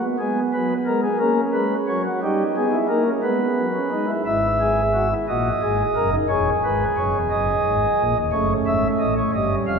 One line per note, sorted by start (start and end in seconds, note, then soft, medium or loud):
0.02 0.16 B3 medium
0.19 0.40 G#3 medium
0.19 1.06 B3 medium
0.19 0.40 G#4 medium
0.53 0.74 F#3 medium
0.53 0.74 B4 medium
0.86 1.08 G#3 medium
0.86 1.01 A#4 medium
1.03 1.18 G#4 medium
1.19 1.40 A#3 medium
1.19 2.07 C#4 medium
1.19 1.41 A#4 medium
1.53 1.74 G#3 medium
1.53 1.74 B4 medium
1.88 2.09 F#3 medium
1.88 2.02 C#5 medium
2.05 2.19 F#4 medium
2.22 2.43 G3 medium
2.22 2.65 D#4 medium
2.22 2.43 G4 medium
2.56 2.77 B3 medium
2.56 2.77 G#4 medium
2.72 2.86 E4 medium
2.88 3.10 A#3 medium
2.88 3.03 D#4 medium
2.88 3.10 A#4 medium
3.05 3.20 C#4 medium
3.23 3.44 G#3 medium
3.23 3.67 B3 medium
3.23 4.11 B4 medium
3.58 3.78 F#3 medium
3.75 3.89 C#4 medium
3.91 4.13 G#3 medium
3.91 4.06 D#4 medium
4.07 4.22 E4 medium
4.25 5.13 G#1 medium
4.25 5.13 G#2 medium
4.25 4.47 E4 medium
4.25 5.13 E5 medium
4.60 4.81 G#4 medium
4.93 5.08 F#4 medium
5.11 5.26 E4 medium
5.28 5.49 A#1 medium
5.28 5.49 A#2 medium
5.28 5.49 F#4 medium
5.28 6.15 D#5 medium
5.62 5.83 G#1 medium
5.62 5.83 G#2 medium
5.62 5.83 G#4 medium
5.95 6.16 F#1 medium
5.95 6.17 F#2 medium
5.95 6.10 A#4 medium
6.11 6.26 D#4 medium
6.29 6.50 E1 medium
6.29 6.50 E2 medium
6.29 8.03 G#4 medium
6.29 6.50 C#5 medium
6.64 6.85 G#1 medium
6.64 6.84 G#2 medium
6.64 6.84 B4 medium
6.97 7.11 F#1 medium
6.97 7.11 F#2 medium
6.97 7.18 C#5 medium
7.14 7.28 E1 medium
7.14 7.28 E2 medium
7.30 7.51 F#1 medium
7.30 7.51 F#2 medium
7.30 8.18 D#5 medium
7.65 7.85 G#1 medium
7.65 7.86 G#2 medium
8.00 8.13 A#1 medium
8.00 8.13 A#2 medium
8.16 8.30 D#1 medium
8.16 8.30 D#2 medium
8.32 8.53 F#1 medium
8.32 8.53 F#2 medium
8.32 9.19 A3 medium
8.32 9.79 C#4 medium
8.32 8.53 C#5 medium
8.66 8.87 G#1 medium
8.66 8.87 G#2 medium
8.66 8.87 E5 medium
8.99 9.20 A1 medium
8.99 9.21 A2 medium
8.99 9.14 D#5 medium
9.17 9.31 C#5 medium
9.34 9.55 G1 medium
9.34 9.55 G2 medium
9.34 9.79 G3 medium
9.34 9.55 D#5 medium
9.66 9.79 F1 medium
9.66 9.79 F2 medium
9.66 9.79 F5 medium